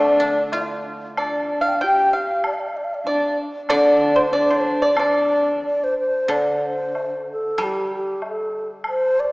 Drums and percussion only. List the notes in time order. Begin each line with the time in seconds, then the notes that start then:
0.52 low woodblock
1.17 high woodblock
2.44 high woodblock
3.69 high woodblock
4.97 high woodblock
6.29 high woodblock
6.95 high woodblock, low woodblock
7.58 high woodblock
8.22 high woodblock, low woodblock
8.84 high woodblock